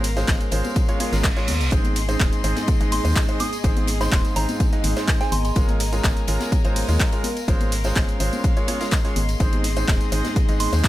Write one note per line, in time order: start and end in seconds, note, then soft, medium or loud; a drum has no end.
0.00 0.24 G#1 loud
0.00 1.72 C#4 medium
0.00 0.57 A#4 medium
0.00 1.68 A#4 medium
0.00 0.57 F5 medium
0.00 1.70 F5 medium
0.00 0.57 C6 medium
0.00 5.28 C6 medium
0.00 snare soft
0.04 open hi-hat loud
0.04 ride medium
0.17 0.49 G#3 medium
0.17 0.49 C#4 medium
0.17 0.49 F4 medium
0.17 0.49 G#4 medium
0.17 0.49 C5 loud
0.17 snare soft
0.17 closed hi-hat soft
0.17 tambourine medium
0.28 0.38 G#1 medium
0.28 kick loud
0.28 snare loud
0.28 clap loud
0.28 closed hi-hat medium
0.28 ride medium
0.28 tambourine medium
0.28 high conga medium
0.40 closed hi-hat soft
0.40 tambourine soft
0.48 0.62 G#1 medium
0.48 0.86 G#3 medium
0.48 0.86 C#4 medium
0.48 0.86 F4 medium
0.48 6.19 G#4 medium
0.48 0.86 G#4 medium
0.48 0.86 C5 loud
0.48 6.19 D#5 medium
0.48 open hi-hat loud
0.48 ride medium
0.64 closed hi-hat soft
0.64 tambourine medium
0.64 high conga loud
0.76 kick loud
0.76 closed hi-hat medium
0.76 ride medium
0.76 tambourine medium
0.76 reverse cymbal medium
0.89 0.98 G#3 medium
0.89 0.98 C#4 medium
0.89 0.98 F4 medium
0.89 0.98 G#4 medium
0.89 0.98 C#5 loud
0.89 closed hi-hat soft
0.89 tambourine soft
1.00 1.10 G#3 medium
1.00 1.10 C#4 medium
1.00 1.10 F4 medium
1.00 1.10 G#4 medium
1.00 1.10 C#5 loud
1.00 open hi-hat loud
1.00 ride medium
1.00 high conga medium
1.13 1.50 G#1 medium
1.13 1.26 G#3 medium
1.13 1.26 C#4 medium
1.13 1.26 F4 medium
1.13 1.26 G#4 medium
1.13 1.26 A#4 medium
1.13 snare medium
1.13 closed hi-hat soft
1.13 tambourine medium
1.24 kick loud
1.24 snare loud
1.24 clap loud
1.24 closed hi-hat medium
1.24 ride medium
1.37 1.50 G#3 medium
1.37 1.50 C#4 medium
1.37 1.50 F4 medium
1.37 1.50 G#4 medium
1.37 1.50 C#5 loud
1.37 snare soft
1.37 closed hi-hat soft
1.37 tambourine soft
1.48 1.62 D#2 medium
1.48 open hi-hat loud
1.48 ride medium
1.48 high conga medium
1.61 1.70 C2 medium
1.61 closed hi-hat soft
1.61 ride soft
1.61 tambourine medium
1.72 2.16 G#1 loud
1.72 1.95 G#2 loud
1.72 1.95 C4 medium
1.72 1.95 D#4 medium
1.72 1.95 G#4 medium
1.72 5.28 G#4 medium
1.72 1.95 C5 loud
1.72 3.62 D#5 medium
1.72 kick loud
1.72 closed hi-hat medium
1.72 ride medium
1.72 tambourine medium
1.84 closed hi-hat soft
1.84 ride soft
1.84 tambourine soft
1.84 high conga loud
1.96 snare soft
1.96 open hi-hat loud
1.96 ride medium
2.09 2.41 G#2 medium
2.09 2.41 C4 medium
2.09 2.41 D#4 medium
2.09 2.41 G#4 medium
2.09 2.41 C5 loud
2.09 closed hi-hat soft
2.09 tambourine medium
2.20 2.30 D#1 medium
2.20 kick loud
2.20 snare loud
2.20 clap loud
2.20 closed hi-hat medium
2.20 ride medium
2.20 tambourine medium
2.20 high conga medium
2.33 closed hi-hat soft
2.33 tambourine soft
2.44 2.54 G#1 medium
2.44 2.78 G#2 medium
2.44 2.78 C4 medium
2.44 2.78 D#4 medium
2.44 2.78 G#4 medium
2.44 2.78 C5 loud
2.44 open hi-hat loud
2.44 ride medium
2.56 snare medium
2.56 closed hi-hat soft
2.56 tambourine medium
2.56 high conga medium
2.67 kick loud
2.67 closed hi-hat medium
2.67 ride medium
2.67 tambourine medium
2.80 2.99 G#1 loud
2.80 3.02 G#2 medium
2.80 3.02 C4 medium
2.80 3.02 D#4 medium
2.80 3.02 G#4 medium
2.80 3.02 D#5 loud
2.80 closed hi-hat soft
2.80 ride soft
2.80 tambourine soft
2.91 3.09 C6 medium
2.91 open hi-hat medium
2.91 open hi-hat loud
2.91 ride medium
2.91 high conga medium
3.00 6.19 A#5 medium
3.05 3.14 D#2 medium
3.05 3.26 G#2 medium
3.05 3.26 C4 medium
3.05 3.26 D#4 medium
3.05 3.26 G#4 medium
3.05 3.26 C5 loud
3.05 closed hi-hat soft
3.05 tambourine medium
3.15 kick loud
3.15 snare loud
3.15 clap loud
3.15 closed hi-hat medium
3.15 ride medium
3.15 tambourine medium
3.29 3.42 G#2 medium
3.29 3.42 C4 medium
3.29 3.42 D#4 medium
3.29 3.42 G#4 medium
3.29 3.42 C5 loud
3.29 closed hi-hat soft
3.29 ride soft
3.29 tambourine soft
3.40 3.57 D#6 medium
3.40 open hi-hat loud
3.40 ride medium
3.40 high conga loud
3.53 closed hi-hat soft
3.53 ride soft
3.53 tambourine medium
3.64 4.08 G#1 loud
3.64 3.87 G#2 loud
3.64 3.87 C4 medium
3.64 3.87 D#4 medium
3.64 3.87 G#4 medium
3.64 3.87 C5 loud
3.64 5.30 F5 medium
3.64 kick loud
3.64 closed hi-hat medium
3.64 ride medium
3.64 tambourine medium
3.76 closed hi-hat soft
3.76 ride soft
3.76 tambourine soft
3.76 high conga loud
3.87 snare soft
3.87 open hi-hat loud
3.87 ride medium
4.01 4.33 G#2 medium
4.01 4.33 C4 medium
4.01 4.33 D#4 medium
4.01 4.33 G#4 medium
4.01 4.33 C5 loud
4.01 4.34 C6 medium
4.01 snare soft
4.01 closed hi-hat soft
4.01 tambourine medium
4.12 kick loud
4.12 snare loud
4.12 clap loud
4.12 closed hi-hat medium
4.12 ride medium
4.12 tambourine medium
4.12 high conga medium
4.25 closed hi-hat soft
4.25 tambourine soft
4.36 4.46 G#1 medium
4.36 4.70 G#2 medium
4.36 4.70 C4 medium
4.36 4.70 D#4 medium
4.36 4.70 G#4 medium
4.36 4.70 C5 loud
4.36 4.53 A#5 medium
4.36 open hi-hat loud
4.36 ride medium
4.49 closed hi-hat soft
4.49 tambourine medium
4.49 high conga loud
4.60 kick loud
4.60 closed hi-hat medium
4.60 ride medium
4.60 tambourine medium
4.72 4.94 G#2 medium
4.72 4.94 C4 medium
4.72 4.94 D#4 medium
4.72 4.94 G#4 medium
4.72 4.94 D#5 loud
4.72 closed hi-hat soft
4.72 tambourine soft
4.84 4.94 G#1 loud
4.84 open hi-hat loud
4.84 ride medium
4.84 high conga medium
4.96 5.18 G#2 loud
4.96 5.18 C4 medium
4.96 5.18 D#4 medium
4.96 5.18 G#4 medium
4.96 5.18 C5 loud
4.96 snare medium
4.96 closed hi-hat soft
4.96 tambourine medium
5.08 kick loud
5.08 snare loud
5.08 clap loud
5.08 closed hi-hat medium
5.08 ride loud
5.08 tambourine medium
5.21 5.31 C4 medium
5.21 5.31 D#4 medium
5.21 5.31 G#4 medium
5.21 5.31 C5 loud
5.21 5.30 G#5 loud
5.21 snare soft
5.21 closed hi-hat soft
5.21 tambourine soft
5.32 5.51 G#1 medium
5.32 9.36 A#4 medium
5.32 8.07 A#4 medium
5.32 7.46 G#5 medium
5.32 7.46 A#5 medium
5.32 5.40 C6 medium
5.32 open hi-hat loud
5.32 ride medium
5.32 high conga loud
5.45 5.52 C6 medium
5.45 closed hi-hat soft
5.45 ride soft
5.45 tambourine medium
5.56 6.00 G#1 loud
5.56 5.79 G#3 loud
5.56 5.79 C#4 medium
5.56 5.79 F4 medium
5.56 5.79 G#4 medium
5.56 5.79 A#4 loud
5.56 kick loud
5.56 closed hi-hat medium
5.56 ride medium
5.56 tambourine medium
5.69 closed hi-hat soft
5.69 ride soft
5.69 tambourine soft
5.69 high conga loud
5.79 8.25 F5 medium
5.79 snare soft
5.79 open hi-hat loud
5.79 ride medium
5.93 6.25 G#3 medium
5.93 6.25 C#4 medium
5.93 6.25 F4 medium
5.93 6.25 G#4 medium
5.93 6.25 A#4 loud
5.93 closed hi-hat soft
5.93 tambourine medium
6.04 6.14 G#1 medium
6.04 kick loud
6.04 snare loud
6.04 clap loud
6.04 closed hi-hat medium
6.04 ride loud
6.04 tambourine medium
6.04 high conga medium
6.17 closed hi-hat soft
6.17 tambourine soft
6.27 6.38 G#1 medium
6.27 6.62 G#3 medium
6.27 6.62 C#4 medium
6.27 6.62 F4 medium
6.27 6.62 G#4 medium
6.27 6.62 A#4 loud
6.27 8.25 C6 medium
6.27 open hi-hat loud
6.27 ride medium
6.40 snare medium
6.40 closed hi-hat soft
6.40 tambourine medium
6.40 high conga loud
6.52 kick loud
6.52 closed hi-hat medium
6.52 ride medium
6.52 tambourine medium
6.65 6.83 G#1 loud
6.65 6.86 G#3 medium
6.65 6.86 C#4 medium
6.65 6.86 F4 medium
6.65 6.86 G#4 medium
6.65 6.86 C5 loud
6.65 closed hi-hat soft
6.65 ride soft
6.65 tambourine soft
6.76 open hi-hat medium
6.76 open hi-hat loud
6.76 ride medium
6.76 high conga medium
6.88 6.98 D#2 medium
6.88 7.10 G#3 loud
6.88 7.10 C#4 medium
6.88 7.10 F4 medium
6.88 7.10 G#4 medium
6.88 7.10 A#4 loud
6.88 closed hi-hat soft
6.88 tambourine medium
6.99 kick loud
6.99 snare loud
6.99 clap loud
6.99 closed hi-hat medium
6.99 ride medium
6.99 tambourine medium
7.12 7.26 G#3 medium
7.12 7.26 C#4 medium
7.12 7.26 F4 medium
7.12 7.26 G#4 medium
7.12 7.26 A#4 loud
7.12 closed hi-hat soft
7.12 ride soft
7.12 tambourine soft
7.24 open hi-hat loud
7.24 ride medium
7.24 high conga loud
7.37 closed hi-hat soft
7.37 ride soft
7.37 tambourine medium
7.48 7.92 G#1 loud
7.48 7.71 G#3 loud
7.48 7.71 C#4 medium
7.48 9.40 C#4 medium
7.48 7.71 F4 medium
7.48 7.71 G#4 medium
7.48 7.71 C5 loud
7.48 9.38 F5 medium
7.48 10.88 C6 medium
7.48 kick loud
7.48 closed hi-hat medium
7.48 ride medium
7.48 tambourine medium
7.60 closed hi-hat soft
7.60 ride soft
7.60 tambourine soft
7.60 high conga medium
7.72 snare soft
7.72 open hi-hat loud
7.72 ride medium
7.84 8.17 G#3 medium
7.84 8.17 C#4 medium
7.84 8.17 F4 medium
7.84 8.17 G#4 medium
7.84 8.17 C5 loud
7.84 10.88 D#5 medium
7.84 snare soft
7.84 closed hi-hat soft
7.84 tambourine medium
7.95 8.06 G#1 medium
7.95 10.88 G#4 medium
7.95 kick loud
7.95 snare loud
7.95 clap loud
7.95 closed hi-hat medium
7.95 ride medium
7.95 tambourine medium
7.95 high conga medium
8.08 closed hi-hat soft
8.08 tambourine soft
8.20 8.30 G#1 medium
8.20 8.54 G#3 medium
8.20 8.54 C#4 medium
8.20 8.54 F4 medium
8.20 8.54 G#4 medium
8.20 8.54 C5 loud
8.20 open hi-hat loud
8.20 ride medium
8.33 closed hi-hat soft
8.33 tambourine medium
8.33 high conga medium
8.44 kick loud
8.44 closed hi-hat medium
8.44 ride medium
8.44 tambourine medium
8.57 8.66 G#3 medium
8.57 8.66 C#4 medium
8.57 8.66 F4 medium
8.57 8.66 G#4 medium
8.57 8.66 C#5 loud
8.57 closed hi-hat soft
8.57 tambourine soft
8.68 8.78 G#3 medium
8.68 8.78 C#4 medium
8.68 8.78 F4 medium
8.68 8.78 G#4 medium
8.68 8.78 C#5 loud
8.68 open hi-hat loud
8.68 ride medium
8.68 high conga medium
8.80 8.94 G#3 medium
8.80 8.94 C#4 medium
8.80 8.94 F4 medium
8.80 8.94 G#4 medium
8.80 8.94 A#4 loud
8.80 snare medium
8.80 closed hi-hat soft
8.80 tambourine medium
8.91 kick loud
8.91 snare loud
8.91 clap loud
8.91 closed hi-hat medium
8.91 ride medium
8.91 tambourine medium
9.05 9.18 G#3 medium
9.05 9.18 C#4 medium
9.05 9.18 F4 medium
9.05 9.18 G#4 medium
9.05 9.18 C#5 loud
9.05 snare soft
9.05 closed hi-hat soft
9.05 tambourine soft
9.16 9.35 G#1 medium
9.16 open hi-hat loud
9.16 ride medium
9.16 high conga medium
9.29 closed hi-hat soft
9.29 ride soft
9.29 tambourine medium
9.40 9.84 G#1 loud
9.40 9.63 G#2 loud
9.40 9.63 C4 medium
9.40 9.63 D#4 medium
9.40 9.63 G#4 medium
9.40 10.88 G#4 medium
9.40 9.63 C5 loud
9.40 10.88 D#5 medium
9.40 kick loud
9.40 closed hi-hat medium
9.40 ride medium
9.40 tambourine medium
9.52 closed hi-hat soft
9.52 ride soft
9.52 tambourine soft
9.52 high conga medium
9.64 snare soft
9.64 open hi-hat loud
9.64 ride medium
9.76 10.09 G#2 medium
9.76 10.09 C4 medium
9.76 10.09 D#4 medium
9.76 10.09 G#4 medium
9.76 10.09 C5 loud
9.76 closed hi-hat soft
9.76 tambourine medium
9.88 9.98 D#1 medium
9.88 kick loud
9.88 snare loud
9.88 clap loud
9.88 closed hi-hat medium
9.88 ride medium
9.88 tambourine medium
9.88 high conga medium
10.01 closed hi-hat soft
10.01 tambourine soft
10.12 10.22 G#1 medium
10.12 10.46 G#2 medium
10.12 10.46 C4 medium
10.12 10.46 D#4 medium
10.12 10.46 G#4 medium
10.12 10.46 C5 loud
10.12 open hi-hat loud
10.12 ride medium
10.25 snare medium
10.25 closed hi-hat soft
10.25 tambourine medium
10.25 high conga medium
10.36 kick loud
10.36 closed hi-hat medium
10.36 ride medium
10.36 tambourine medium
10.49 10.67 G#1 loud
10.49 10.70 G#2 medium
10.49 10.70 C4 medium
10.49 10.70 D#4 medium
10.49 10.70 G#4 medium
10.49 10.70 D#5 loud
10.49 closed hi-hat soft
10.49 ride soft
10.49 tambourine soft
10.60 10.77 C6 medium
10.60 open hi-hat medium
10.60 open hi-hat loud
10.60 ride medium
10.60 high conga medium
10.73 10.82 D#2 medium
10.73 10.88 G#2 medium
10.73 10.88 C4 medium
10.73 10.88 D#4 medium
10.73 10.88 G#4 medium
10.73 10.88 C5 loud
10.73 closed hi-hat soft
10.73 tambourine medium
10.84 kick loud
10.84 snare loud
10.84 clap loud
10.84 closed hi-hat medium
10.84 ride medium
10.84 tambourine medium